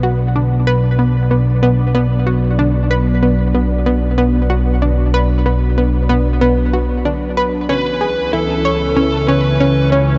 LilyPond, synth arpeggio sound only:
\new Staff \with { instrumentName = "Synth arpeggio sound" } { \time 4/4 \key b \minor \tempo 4 = 94 fis'8 d'8 b'8 b16 r16 b16 r16 b8 b8 fis'8 | d'8 b'8 b16 r16 b16 r16 b8 b8 fis'8 d'8 | b'8 b16 r16 b16 r16 b8 b8 fis'8 d'8 b'8 | cis'8 gis'8 e'8 cis''8 cis'16 r16 cis'8 cis'8 cis'8 | }